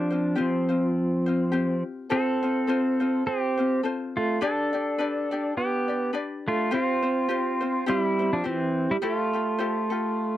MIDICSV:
0, 0, Header, 1, 4, 480
1, 0, Start_track
1, 0, Key_signature, -1, "major"
1, 0, Tempo, 576369
1, 1751, Time_signature, 4, 2, 24, 8
1, 8637, End_track
2, 0, Start_track
2, 0, Title_t, "Vibraphone"
2, 0, Program_c, 0, 11
2, 0, Note_on_c, 0, 65, 84
2, 278, Note_off_c, 0, 65, 0
2, 319, Note_on_c, 0, 65, 65
2, 1511, Note_off_c, 0, 65, 0
2, 1746, Note_on_c, 0, 72, 85
2, 2675, Note_off_c, 0, 72, 0
2, 2714, Note_on_c, 0, 72, 75
2, 3159, Note_off_c, 0, 72, 0
2, 3466, Note_on_c, 0, 69, 67
2, 3658, Note_off_c, 0, 69, 0
2, 3678, Note_on_c, 0, 74, 85
2, 4601, Note_off_c, 0, 74, 0
2, 4646, Note_on_c, 0, 71, 68
2, 5085, Note_off_c, 0, 71, 0
2, 5401, Note_on_c, 0, 69, 84
2, 5587, Note_off_c, 0, 69, 0
2, 5613, Note_on_c, 0, 72, 81
2, 6529, Note_off_c, 0, 72, 0
2, 6555, Note_on_c, 0, 67, 74
2, 6902, Note_off_c, 0, 67, 0
2, 6931, Note_on_c, 0, 65, 69
2, 7026, Note_off_c, 0, 65, 0
2, 7036, Note_on_c, 0, 64, 62
2, 7382, Note_off_c, 0, 64, 0
2, 7401, Note_on_c, 0, 67, 73
2, 7449, Note_off_c, 0, 67, 0
2, 7507, Note_on_c, 0, 69, 76
2, 8637, Note_off_c, 0, 69, 0
2, 8637, End_track
3, 0, Start_track
3, 0, Title_t, "Ukulele"
3, 0, Program_c, 1, 24
3, 0, Note_on_c, 1, 60, 61
3, 0, Note_on_c, 1, 65, 76
3, 0, Note_on_c, 1, 67, 62
3, 88, Note_on_c, 1, 72, 53
3, 90, Note_off_c, 1, 65, 0
3, 94, Note_off_c, 1, 67, 0
3, 97, Note_off_c, 1, 60, 0
3, 100, Note_on_c, 1, 65, 44
3, 106, Note_on_c, 1, 60, 42
3, 292, Note_off_c, 1, 60, 0
3, 296, Note_on_c, 1, 67, 61
3, 299, Note_off_c, 1, 65, 0
3, 302, Note_on_c, 1, 60, 61
3, 304, Note_off_c, 1, 72, 0
3, 309, Note_on_c, 1, 65, 60
3, 315, Note_on_c, 1, 72, 63
3, 562, Note_off_c, 1, 72, 0
3, 570, Note_off_c, 1, 65, 0
3, 572, Note_on_c, 1, 72, 49
3, 573, Note_off_c, 1, 67, 0
3, 576, Note_off_c, 1, 60, 0
3, 580, Note_on_c, 1, 65, 44
3, 590, Note_on_c, 1, 60, 38
3, 1050, Note_off_c, 1, 72, 0
3, 1050, Note_on_c, 1, 72, 59
3, 1060, Note_off_c, 1, 65, 0
3, 1063, Note_on_c, 1, 65, 48
3, 1068, Note_off_c, 1, 60, 0
3, 1072, Note_on_c, 1, 60, 47
3, 1257, Note_off_c, 1, 60, 0
3, 1260, Note_off_c, 1, 72, 0
3, 1263, Note_on_c, 1, 67, 57
3, 1265, Note_off_c, 1, 65, 0
3, 1267, Note_on_c, 1, 60, 59
3, 1275, Note_on_c, 1, 65, 62
3, 1276, Note_on_c, 1, 72, 65
3, 1745, Note_off_c, 1, 67, 0
3, 1746, Note_off_c, 1, 60, 0
3, 1748, Note_on_c, 1, 69, 62
3, 1749, Note_on_c, 1, 60, 67
3, 1752, Note_off_c, 1, 65, 0
3, 1755, Note_on_c, 1, 65, 80
3, 1758, Note_off_c, 1, 72, 0
3, 1761, Note_on_c, 1, 72, 73
3, 2010, Note_off_c, 1, 72, 0
3, 2017, Note_off_c, 1, 65, 0
3, 2019, Note_off_c, 1, 69, 0
3, 2020, Note_off_c, 1, 60, 0
3, 2020, Note_on_c, 1, 72, 52
3, 2027, Note_on_c, 1, 65, 51
3, 2034, Note_on_c, 1, 60, 42
3, 2223, Note_off_c, 1, 60, 0
3, 2226, Note_on_c, 1, 69, 56
3, 2230, Note_off_c, 1, 72, 0
3, 2231, Note_off_c, 1, 65, 0
3, 2233, Note_on_c, 1, 60, 66
3, 2241, Note_on_c, 1, 65, 68
3, 2242, Note_on_c, 1, 72, 69
3, 2487, Note_off_c, 1, 72, 0
3, 2494, Note_off_c, 1, 65, 0
3, 2497, Note_on_c, 1, 72, 50
3, 2498, Note_off_c, 1, 69, 0
3, 2502, Note_off_c, 1, 60, 0
3, 2504, Note_on_c, 1, 65, 50
3, 2514, Note_on_c, 1, 60, 47
3, 2967, Note_off_c, 1, 72, 0
3, 2977, Note_off_c, 1, 65, 0
3, 2977, Note_on_c, 1, 72, 46
3, 2987, Note_off_c, 1, 60, 0
3, 2987, Note_on_c, 1, 65, 46
3, 2997, Note_on_c, 1, 60, 43
3, 3184, Note_off_c, 1, 60, 0
3, 3189, Note_off_c, 1, 72, 0
3, 3191, Note_on_c, 1, 69, 53
3, 3194, Note_off_c, 1, 65, 0
3, 3194, Note_on_c, 1, 60, 58
3, 3202, Note_on_c, 1, 65, 56
3, 3207, Note_on_c, 1, 72, 60
3, 3668, Note_off_c, 1, 69, 0
3, 3672, Note_off_c, 1, 60, 0
3, 3672, Note_on_c, 1, 71, 70
3, 3676, Note_off_c, 1, 65, 0
3, 3677, Note_on_c, 1, 62, 72
3, 3679, Note_off_c, 1, 72, 0
3, 3680, Note_on_c, 1, 67, 76
3, 3684, Note_on_c, 1, 74, 79
3, 3927, Note_off_c, 1, 74, 0
3, 3937, Note_on_c, 1, 74, 51
3, 3938, Note_off_c, 1, 67, 0
3, 3941, Note_off_c, 1, 71, 0
3, 3944, Note_off_c, 1, 62, 0
3, 3948, Note_on_c, 1, 67, 47
3, 3954, Note_on_c, 1, 62, 43
3, 4146, Note_off_c, 1, 62, 0
3, 4149, Note_off_c, 1, 74, 0
3, 4151, Note_on_c, 1, 71, 64
3, 4152, Note_off_c, 1, 67, 0
3, 4156, Note_on_c, 1, 62, 60
3, 4162, Note_on_c, 1, 67, 59
3, 4166, Note_on_c, 1, 74, 67
3, 4413, Note_off_c, 1, 74, 0
3, 4421, Note_off_c, 1, 71, 0
3, 4422, Note_off_c, 1, 67, 0
3, 4423, Note_off_c, 1, 62, 0
3, 4423, Note_on_c, 1, 74, 56
3, 4432, Note_on_c, 1, 67, 53
3, 4442, Note_on_c, 1, 62, 47
3, 4886, Note_off_c, 1, 74, 0
3, 4896, Note_on_c, 1, 74, 44
3, 4904, Note_off_c, 1, 62, 0
3, 4908, Note_off_c, 1, 67, 0
3, 4908, Note_on_c, 1, 67, 46
3, 4914, Note_on_c, 1, 62, 38
3, 5097, Note_off_c, 1, 62, 0
3, 5100, Note_off_c, 1, 67, 0
3, 5104, Note_on_c, 1, 71, 53
3, 5107, Note_on_c, 1, 62, 58
3, 5108, Note_off_c, 1, 74, 0
3, 5110, Note_on_c, 1, 67, 53
3, 5118, Note_on_c, 1, 74, 68
3, 5584, Note_off_c, 1, 71, 0
3, 5585, Note_off_c, 1, 62, 0
3, 5588, Note_off_c, 1, 67, 0
3, 5588, Note_on_c, 1, 60, 70
3, 5588, Note_on_c, 1, 67, 66
3, 5594, Note_off_c, 1, 74, 0
3, 5594, Note_on_c, 1, 65, 79
3, 5598, Note_on_c, 1, 72, 71
3, 5841, Note_off_c, 1, 72, 0
3, 5849, Note_off_c, 1, 65, 0
3, 5851, Note_on_c, 1, 72, 58
3, 5854, Note_off_c, 1, 60, 0
3, 5859, Note_off_c, 1, 67, 0
3, 5859, Note_on_c, 1, 65, 49
3, 5864, Note_on_c, 1, 60, 40
3, 6063, Note_off_c, 1, 60, 0
3, 6065, Note_off_c, 1, 72, 0
3, 6067, Note_on_c, 1, 67, 66
3, 6068, Note_off_c, 1, 65, 0
3, 6073, Note_on_c, 1, 60, 58
3, 6078, Note_on_c, 1, 65, 69
3, 6083, Note_on_c, 1, 72, 64
3, 6324, Note_off_c, 1, 72, 0
3, 6334, Note_off_c, 1, 65, 0
3, 6334, Note_on_c, 1, 72, 58
3, 6339, Note_off_c, 1, 67, 0
3, 6342, Note_off_c, 1, 60, 0
3, 6344, Note_on_c, 1, 65, 51
3, 6351, Note_on_c, 1, 60, 46
3, 6543, Note_off_c, 1, 60, 0
3, 6548, Note_off_c, 1, 72, 0
3, 6548, Note_on_c, 1, 67, 74
3, 6552, Note_off_c, 1, 65, 0
3, 6553, Note_on_c, 1, 60, 74
3, 6560, Note_on_c, 1, 64, 76
3, 6563, Note_on_c, 1, 72, 78
3, 6811, Note_off_c, 1, 72, 0
3, 6820, Note_off_c, 1, 67, 0
3, 6821, Note_on_c, 1, 72, 49
3, 6822, Note_off_c, 1, 60, 0
3, 6823, Note_off_c, 1, 64, 0
3, 6833, Note_on_c, 1, 64, 44
3, 6843, Note_on_c, 1, 60, 39
3, 7021, Note_off_c, 1, 60, 0
3, 7026, Note_on_c, 1, 67, 55
3, 7028, Note_off_c, 1, 64, 0
3, 7031, Note_off_c, 1, 72, 0
3, 7031, Note_on_c, 1, 60, 57
3, 7038, Note_on_c, 1, 64, 52
3, 7041, Note_on_c, 1, 72, 59
3, 7506, Note_off_c, 1, 72, 0
3, 7507, Note_off_c, 1, 60, 0
3, 7509, Note_on_c, 1, 72, 69
3, 7511, Note_on_c, 1, 65, 73
3, 7512, Note_off_c, 1, 67, 0
3, 7514, Note_off_c, 1, 64, 0
3, 7515, Note_on_c, 1, 67, 74
3, 7520, Note_on_c, 1, 69, 67
3, 7762, Note_off_c, 1, 69, 0
3, 7769, Note_off_c, 1, 72, 0
3, 7770, Note_off_c, 1, 67, 0
3, 7772, Note_on_c, 1, 69, 51
3, 7780, Note_on_c, 1, 67, 51
3, 7781, Note_off_c, 1, 65, 0
3, 7791, Note_on_c, 1, 65, 47
3, 7977, Note_off_c, 1, 65, 0
3, 7979, Note_off_c, 1, 69, 0
3, 7982, Note_on_c, 1, 72, 60
3, 7985, Note_off_c, 1, 67, 0
3, 7987, Note_on_c, 1, 65, 56
3, 7995, Note_on_c, 1, 67, 63
3, 7998, Note_on_c, 1, 69, 62
3, 8235, Note_off_c, 1, 69, 0
3, 8241, Note_off_c, 1, 72, 0
3, 8245, Note_off_c, 1, 67, 0
3, 8245, Note_on_c, 1, 69, 56
3, 8253, Note_off_c, 1, 65, 0
3, 8255, Note_on_c, 1, 67, 48
3, 8263, Note_on_c, 1, 65, 47
3, 8637, Note_off_c, 1, 65, 0
3, 8637, Note_off_c, 1, 67, 0
3, 8637, Note_off_c, 1, 69, 0
3, 8637, End_track
4, 0, Start_track
4, 0, Title_t, "Pedal steel guitar"
4, 0, Program_c, 2, 26
4, 0, Note_on_c, 2, 53, 77
4, 0, Note_on_c, 2, 62, 104
4, 290, Note_off_c, 2, 53, 0
4, 334, Note_on_c, 2, 53, 67
4, 336, Note_off_c, 2, 62, 0
4, 338, Note_on_c, 2, 60, 81
4, 1519, Note_off_c, 2, 53, 0
4, 1520, Note_off_c, 2, 60, 0
4, 1764, Note_on_c, 2, 69, 96
4, 1769, Note_on_c, 2, 60, 77
4, 2686, Note_off_c, 2, 60, 0
4, 2719, Note_off_c, 2, 69, 0
4, 2722, Note_on_c, 2, 67, 89
4, 2733, Note_on_c, 2, 60, 71
4, 3163, Note_off_c, 2, 67, 0
4, 3169, Note_off_c, 2, 60, 0
4, 3471, Note_on_c, 2, 65, 79
4, 3478, Note_on_c, 2, 57, 63
4, 3665, Note_off_c, 2, 57, 0
4, 3679, Note_on_c, 2, 69, 101
4, 3682, Note_off_c, 2, 65, 0
4, 3688, Note_on_c, 2, 62, 74
4, 4606, Note_off_c, 2, 62, 0
4, 4639, Note_off_c, 2, 69, 0
4, 4641, Note_on_c, 2, 59, 61
4, 4643, Note_on_c, 2, 67, 81
4, 5082, Note_off_c, 2, 59, 0
4, 5083, Note_off_c, 2, 67, 0
4, 5394, Note_on_c, 2, 57, 71
4, 5400, Note_on_c, 2, 65, 92
4, 5583, Note_off_c, 2, 57, 0
4, 5606, Note_off_c, 2, 65, 0
4, 5613, Note_on_c, 2, 60, 78
4, 5618, Note_on_c, 2, 65, 100
4, 6528, Note_off_c, 2, 60, 0
4, 6531, Note_off_c, 2, 65, 0
4, 6573, Note_on_c, 2, 55, 74
4, 6575, Note_on_c, 2, 65, 95
4, 6667, Note_off_c, 2, 65, 0
4, 6667, Note_on_c, 2, 64, 95
4, 6912, Note_off_c, 2, 55, 0
4, 6937, Note_on_c, 2, 53, 66
4, 6937, Note_on_c, 2, 62, 83
4, 6948, Note_off_c, 2, 64, 0
4, 7030, Note_off_c, 2, 53, 0
4, 7039, Note_off_c, 2, 62, 0
4, 7046, Note_on_c, 2, 60, 82
4, 7047, Note_on_c, 2, 52, 61
4, 7389, Note_off_c, 2, 52, 0
4, 7421, Note_on_c, 2, 55, 60
4, 7422, Note_on_c, 2, 64, 78
4, 7424, Note_off_c, 2, 60, 0
4, 7462, Note_off_c, 2, 64, 0
4, 7464, Note_off_c, 2, 55, 0
4, 7522, Note_on_c, 2, 65, 88
4, 7526, Note_on_c, 2, 57, 66
4, 8637, Note_off_c, 2, 57, 0
4, 8637, Note_off_c, 2, 65, 0
4, 8637, End_track
0, 0, End_of_file